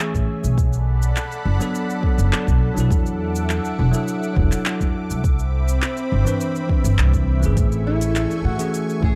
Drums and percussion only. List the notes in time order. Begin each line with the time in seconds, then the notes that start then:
0.00 cabasa
0.14 kick, cabasa
0.44 cabasa
0.58 kick, cabasa
0.73 cabasa
1.02 cabasa
1.16 clap, cabasa
1.32 cabasa
1.61 cabasa
1.75 cabasa
1.90 cabasa
2.03 kick
2.19 cabasa
2.33 clap, cabasa
2.47 kick, cabasa
2.77 cabasa
2.90 kick, cabasa
3.06 cabasa
3.35 cabasa
3.49 clap, cabasa
3.65 cabasa
3.94 cabasa
4.08 cabasa
4.23 cabasa
4.36 kick
4.52 clap, cabasa
4.66 clap, cabasa
4.80 kick, cabasa
5.10 cabasa
5.24 kick, cabasa
5.39 cabasa
5.68 cabasa
5.82 clap, cabasa
5.97 cabasa
6.27 cabasa
6.41 cabasa
6.56 cabasa
6.69 kick
6.85 cabasa
6.98 clap, cabasa
7.13 kick, cabasa
7.43 cabasa
7.57 kick, open hi-hat, cabasa
7.72 cabasa
8.01 open hi-hat, cabasa
8.16 clap, open hi-hat, cabasa
8.31 cabasa
8.59 open hi-hat, cabasa
8.74 open hi-hat, cabasa
8.89 cabasa
9.03 kick